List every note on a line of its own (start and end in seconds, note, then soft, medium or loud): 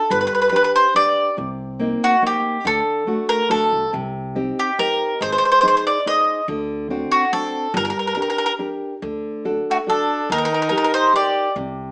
0.00 0.11 A4 medium
0.10 0.25 G1 medium
0.10 0.52 G3 medium
0.10 0.18 B4 medium
0.21 0.26 B4 medium
0.27 0.33 B4 medium
0.35 0.40 B4 medium
0.42 0.48 B4 medium
0.49 0.86 D4 soft
0.49 0.87 G4 soft
0.49 0.55 B4 medium
0.49 0.87 B4 soft
0.56 0.63 B4 medium
0.64 0.71 B4 medium
0.76 0.95 C5 medium
0.94 1.29 D4 soft
0.94 1.29 G4 soft
0.94 1.29 B4 soft
0.94 1.35 D5 medium
1.37 1.93 C2 medium
1.37 1.78 C3 soft
1.79 2.14 A#3 medium
1.79 2.14 C4 soft
1.79 2.14 D#4 medium
2.04 2.22 F#4 medium
2.22 2.56 A#3 soft
2.22 2.56 C4 soft
2.22 2.57 D#4 soft
2.27 2.64 G4 medium
2.65 2.79 D2 loud
2.65 3.06 D3 medium
2.65 3.26 A4 medium
3.07 3.41 A3 soft
3.07 3.42 D4 soft
3.07 3.42 F#4 soft
3.29 3.49 A#4 medium
3.49 3.70 D2 medium
3.49 3.84 A3 soft
3.49 3.84 D4 soft
3.49 3.84 F#4 soft
3.49 3.90 A4 medium
3.72 3.91 C2 medium
3.93 4.49 C2 medium
3.93 4.34 C3 medium
4.35 4.70 C4 soft
4.35 4.70 D#4 soft
4.35 4.70 G4 soft
4.59 4.78 G4 medium
4.78 5.12 C4 soft
4.78 5.13 D#4 soft
4.78 5.13 G4 soft
4.78 5.18 A#4 medium
5.20 5.35 G#1 medium
5.20 5.62 G#3 medium
5.20 5.29 C5 medium
5.32 5.37 C5 medium
5.38 5.44 C5 medium
5.45 5.50 C5 soft
5.52 5.59 C5 medium
5.61 5.97 D#4 soft
5.61 5.97 G#4 soft
5.61 5.67 C5 medium
5.61 5.97 C5 medium
5.68 5.75 C5 medium
5.77 5.83 C5 medium
5.87 6.05 D5 medium
6.06 6.40 D#4 soft
6.06 6.40 G#4 soft
6.06 6.40 C5 soft
6.06 6.46 D#5 medium
6.48 7.03 D2 loud
6.48 6.89 D3 medium
6.90 7.24 C4 soft
6.90 7.24 D4 soft
6.90 7.25 F#4 medium
7.12 7.31 F#4 medium
7.32 7.66 C4 soft
7.32 7.67 D4 soft
7.32 7.67 F#4 soft
7.32 7.72 A4 medium
7.74 7.88 G1 loud
7.74 8.16 G3 soft
7.74 7.83 A#4 medium
7.85 7.89 A#4 medium
7.90 7.97 A#4 medium
7.99 8.05 A#4 soft
8.07 8.13 A#4 medium
8.15 8.51 D4 soft
8.15 8.51 G4 soft
8.15 8.21 A#4 medium
8.15 8.51 A#4 medium
8.22 8.28 A#4 medium
8.30 8.36 A#4 medium
8.38 8.44 A#4 medium
8.46 8.51 A#4 medium
8.59 8.93 D4 soft
8.59 8.94 G4 soft
8.59 8.94 A#4 soft
9.02 9.58 D2 medium
9.02 9.44 D3 soft
9.45 9.79 D4 soft
9.45 9.79 F#4 soft
9.45 9.79 A4 soft
9.70 9.79 A3 medium
9.70 9.76 F#4 medium
9.87 10.21 D4 soft
9.87 10.28 D4 medium
9.87 10.22 F#4 soft
9.87 10.22 A4 soft
9.87 10.32 A4 medium
10.30 10.44 D#2 medium
10.30 10.71 D#3 soft
10.30 10.91 D#4 medium
10.30 10.37 A#4 medium
10.38 10.44 A#4 medium
10.45 10.52 A#4 medium
10.54 10.61 A#4 medium
10.62 10.68 A#4 medium
10.69 11.05 D#4 soft
10.69 11.06 G4 soft
10.69 10.75 A#4 medium
10.69 11.06 A#4 soft
10.77 10.83 A#4 medium
10.84 10.91 A#4 medium
10.94 11.13 D#4 medium
10.94 11.13 C5 medium
11.13 11.47 D#4 soft
11.13 11.47 G4 soft
11.13 11.54 G4 medium
11.13 11.48 A#4 soft
11.13 11.54 D5 medium
11.56 11.92 C2 medium
11.56 11.92 C3 medium